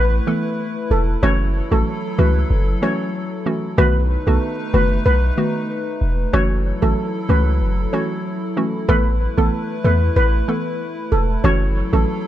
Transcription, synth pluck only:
0.27 E3 A3 B3 A4
1.23 E3 A3 C#4 F#4
1.71 E3 A3 C#4 F#4
2.18 E3 A3 C#4 F#4
2.82 E3 A3 C#4 F#4
3.46 E3 A3 C#4 F#4
3.78 D#3 A3 B3 F#4
4.27 D#3 A3 B3 F#4
4.74 D#3 A3 B3 F#4
5.37 D#3 A3 B3 F#4
6.33 E3 A3 C#4 F#4
6.82 E3 A3 C#4 F#4
7.29 E3 A3 C#4 F#4
7.93 E3 A3 C#4 F#4
8.57 E3 A3 C#4 F#4
8.89 E3 A3 B3 A4
9.37 E3 A3 B3 A4
9.84 E3 A3 B3 A4
10.48 E3 A3 B3 A4
11.44 E3 A3 C#4 F#4
11.93 E3 A3 C#4 F#4

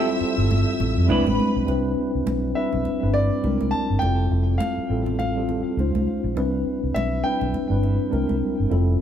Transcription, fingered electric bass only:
0.21 muted fingered electric bass stroke
0.38 G1
0.80 A1
0.97 F2
1.09 C2
1.27 A1
1.56 B1
1.68 C2
2.15 C2
2.26 B1
2.74 B1
2.87 muted fingered electric bass stroke
3.03 G1
3.44 C2
3.62 C2
3.90 G1
4.02 F1
4.31 F1
4.78 muted fingered electric bass stroke
4.90 A1
5.77 C#2
5.94 C2
6.24 A#1
6.36 C2
6.84 C2
6.96 B1
7.42 B1
7.53 muted fingered electric bass stroke
7.70 G1
8.13 C2
8.30 C2
8.60 G1
8.71 F1

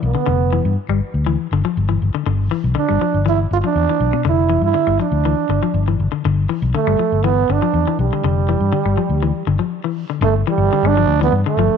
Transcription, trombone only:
0.05 B3
2.78 D4
3.29 E4
3.53 F4
3.66 D4
4.29 E4
4.65 E4
5.02 D4
6.76 A3
7.24 B3
7.52 D4
8.00 G3
10.24 A3
10.49 G3
10.88 D4
11.24 B3
11.48 A3

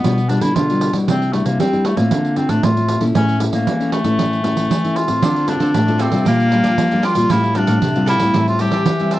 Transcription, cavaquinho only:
5.22 F4 A4 C5 D5
5.36 A4 C5 D5
5.47 F4 A4 C5 D5
5.60 F4 A4 C5 D5
5.86 A4 C5 D5
5.98 F4 A4 C5 D5
6.25 D4 A#4 D5 G5
6.51 D4 A#4 D5 G5
6.63 D4 A#4 D5 G5
6.91 A#4 D5 G5
7.03 D4 A#4 D5 G5
7.15 A#4 D5 G5
7.29 G4 A4 F5 A5
7.43 G4 F5 A5
7.54 G4 A4 F5 A5
7.67 G4 A4 F5 A5
7.95 G4 F5 A5
8.06 G4 A4 F5 A5
8.33 G4 C5 E5 A5
8.59 G4 C5 E5 A5
8.72 G4 C5 E5 A5
9.00 C5 E5 A5
9.11 G4 C5 E5 A5

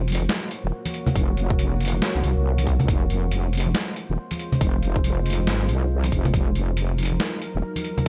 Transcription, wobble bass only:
Already playing: F1
0.64 D#1
1.16 F1
2.15 C2
2.24 C2
2.37 C2
2.88 F1
4.10 D#1
4.61 F1
5.48 G#1
5.69 C2
6.12 F1
6.34 F1
7.55 D#1

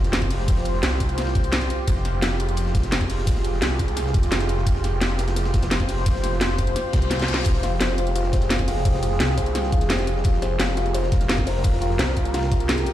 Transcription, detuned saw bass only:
Already playing: F1
0.48 F1
0.83 C2
1.88 F1
2.22 F1
2.75 F1
3.27 F1
3.62 C2
4.14 F1
4.67 F1
5.02 F1
5.54 F1
6.06 F1
6.41 F1
6.93 C2
7.46 F1
7.81 F1
8.33 F1
8.85 F1
9.20 C2
9.73 F1
10.25 F1
10.60 F1
11.12 F1
11.64 F1
11.99 C2

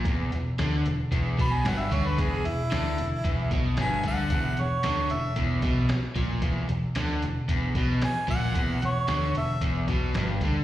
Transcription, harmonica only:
1.41 B5
1.54 G#5
1.69 F#5
1.80 E5
1.94 C#5
2.08 B4
2.20 G#4
2.47 E4
3.81 G#5
4.08 F#5
4.61 C#5
5.12 E5
8.04 G#5
8.30 F#5
8.85 C#5
9.37 E5

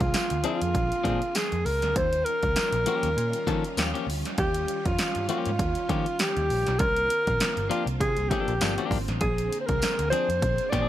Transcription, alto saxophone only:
0.01 F4
0.46 F4
1.36 G#4
1.66 A#4
1.96 C5
2.25 A#4
4.39 G4
4.86 F4
5.30 F4
6.21 G4
6.79 A#4
7.70 F4
8.00 G#4
8.29 G4
9.21 G#4
9.60 C5
9.66 A#4
10.10 C5
10.70 D5

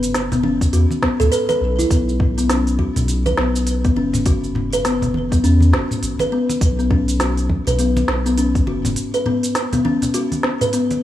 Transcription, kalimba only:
Already playing: B3
0.32 B3
0.43 C#4
0.73 F#4
1.02 B3
1.20 A4
1.32 B4
1.49 B4
1.79 E4
1.90 B3
2.38 B3
2.49 C#4
2.79 F#4
3.26 B4
3.38 B3
3.85 B3
3.97 C#4
4.26 F#4
4.73 B4
4.85 B3
5.32 B3
5.44 C#4
5.73 F#4
6.20 B4
6.32 B3
6.79 B3
6.91 C#4
7.20 F#4
7.67 B4
7.79 B3
8.26 B3
8.38 C#4
8.67 F#4
9.14 B4
9.26 B3
9.73 B3
9.85 C#4
10.14 F#4
10.61 B4
10.73 B3

